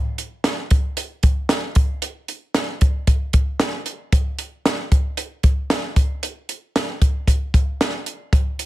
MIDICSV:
0, 0, Header, 1, 2, 480
1, 0, Start_track
1, 0, Tempo, 525394
1, 1848, Time_signature, 4, 2, 24, 8
1, 7909, End_track
2, 0, Start_track
2, 0, Title_t, "Drums"
2, 167, Note_on_c, 9, 42, 61
2, 258, Note_off_c, 9, 42, 0
2, 402, Note_on_c, 9, 38, 85
2, 403, Note_on_c, 9, 42, 72
2, 494, Note_off_c, 9, 38, 0
2, 494, Note_off_c, 9, 42, 0
2, 644, Note_on_c, 9, 42, 66
2, 650, Note_on_c, 9, 36, 81
2, 736, Note_off_c, 9, 42, 0
2, 742, Note_off_c, 9, 36, 0
2, 885, Note_on_c, 9, 42, 75
2, 976, Note_off_c, 9, 42, 0
2, 1123, Note_on_c, 9, 42, 65
2, 1128, Note_on_c, 9, 36, 80
2, 1214, Note_off_c, 9, 42, 0
2, 1219, Note_off_c, 9, 36, 0
2, 1362, Note_on_c, 9, 38, 85
2, 1363, Note_on_c, 9, 42, 73
2, 1453, Note_off_c, 9, 38, 0
2, 1454, Note_off_c, 9, 42, 0
2, 1600, Note_on_c, 9, 42, 65
2, 1609, Note_on_c, 9, 36, 78
2, 1692, Note_off_c, 9, 42, 0
2, 1700, Note_off_c, 9, 36, 0
2, 1846, Note_on_c, 9, 42, 72
2, 1937, Note_off_c, 9, 42, 0
2, 2087, Note_on_c, 9, 42, 57
2, 2178, Note_off_c, 9, 42, 0
2, 2325, Note_on_c, 9, 38, 84
2, 2325, Note_on_c, 9, 42, 75
2, 2416, Note_off_c, 9, 38, 0
2, 2417, Note_off_c, 9, 42, 0
2, 2567, Note_on_c, 9, 42, 63
2, 2573, Note_on_c, 9, 36, 78
2, 2659, Note_off_c, 9, 42, 0
2, 2665, Note_off_c, 9, 36, 0
2, 2808, Note_on_c, 9, 42, 70
2, 2809, Note_on_c, 9, 36, 72
2, 2899, Note_off_c, 9, 42, 0
2, 2900, Note_off_c, 9, 36, 0
2, 3044, Note_on_c, 9, 42, 67
2, 3050, Note_on_c, 9, 36, 68
2, 3136, Note_off_c, 9, 42, 0
2, 3141, Note_off_c, 9, 36, 0
2, 3285, Note_on_c, 9, 38, 104
2, 3285, Note_on_c, 9, 42, 83
2, 3376, Note_off_c, 9, 38, 0
2, 3377, Note_off_c, 9, 42, 0
2, 3524, Note_on_c, 9, 42, 72
2, 3615, Note_off_c, 9, 42, 0
2, 3768, Note_on_c, 9, 42, 81
2, 3769, Note_on_c, 9, 36, 88
2, 3860, Note_off_c, 9, 42, 0
2, 3861, Note_off_c, 9, 36, 0
2, 4007, Note_on_c, 9, 42, 70
2, 4098, Note_off_c, 9, 42, 0
2, 4253, Note_on_c, 9, 38, 84
2, 4254, Note_on_c, 9, 42, 74
2, 4344, Note_off_c, 9, 38, 0
2, 4345, Note_off_c, 9, 42, 0
2, 4492, Note_on_c, 9, 36, 72
2, 4492, Note_on_c, 9, 42, 62
2, 4583, Note_off_c, 9, 42, 0
2, 4584, Note_off_c, 9, 36, 0
2, 4727, Note_on_c, 9, 42, 79
2, 4818, Note_off_c, 9, 42, 0
2, 4964, Note_on_c, 9, 42, 57
2, 4968, Note_on_c, 9, 36, 73
2, 5056, Note_off_c, 9, 42, 0
2, 5060, Note_off_c, 9, 36, 0
2, 5208, Note_on_c, 9, 38, 97
2, 5209, Note_on_c, 9, 42, 68
2, 5300, Note_off_c, 9, 38, 0
2, 5300, Note_off_c, 9, 42, 0
2, 5448, Note_on_c, 9, 42, 70
2, 5449, Note_on_c, 9, 36, 69
2, 5539, Note_off_c, 9, 42, 0
2, 5540, Note_off_c, 9, 36, 0
2, 5691, Note_on_c, 9, 42, 82
2, 5783, Note_off_c, 9, 42, 0
2, 5929, Note_on_c, 9, 42, 63
2, 6021, Note_off_c, 9, 42, 0
2, 6173, Note_on_c, 9, 38, 83
2, 6174, Note_on_c, 9, 42, 85
2, 6265, Note_off_c, 9, 38, 0
2, 6266, Note_off_c, 9, 42, 0
2, 6410, Note_on_c, 9, 36, 75
2, 6410, Note_on_c, 9, 42, 64
2, 6501, Note_off_c, 9, 36, 0
2, 6501, Note_off_c, 9, 42, 0
2, 6646, Note_on_c, 9, 36, 68
2, 6650, Note_on_c, 9, 42, 81
2, 6738, Note_off_c, 9, 36, 0
2, 6741, Note_off_c, 9, 42, 0
2, 6888, Note_on_c, 9, 36, 75
2, 6891, Note_on_c, 9, 42, 59
2, 6980, Note_off_c, 9, 36, 0
2, 6982, Note_off_c, 9, 42, 0
2, 7133, Note_on_c, 9, 38, 91
2, 7134, Note_on_c, 9, 42, 69
2, 7225, Note_off_c, 9, 38, 0
2, 7225, Note_off_c, 9, 42, 0
2, 7367, Note_on_c, 9, 42, 70
2, 7458, Note_off_c, 9, 42, 0
2, 7607, Note_on_c, 9, 36, 97
2, 7609, Note_on_c, 9, 42, 74
2, 7699, Note_off_c, 9, 36, 0
2, 7700, Note_off_c, 9, 42, 0
2, 7850, Note_on_c, 9, 42, 68
2, 7909, Note_off_c, 9, 42, 0
2, 7909, End_track
0, 0, End_of_file